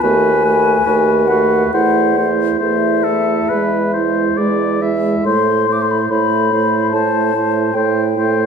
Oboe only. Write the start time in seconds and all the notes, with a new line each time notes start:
0.03 B4
0.45 B4
0.86 B4
1.30 B4
1.74 C5
2.18 C5
2.59 C5
3.04 A4
3.49 B4
3.93 C5
4.37 D5
4.82 E5
5.26 C5
5.68 C5
6.11 C5
6.54 C5
6.95 C5
7.36 C5
7.76 C5
8.17 C5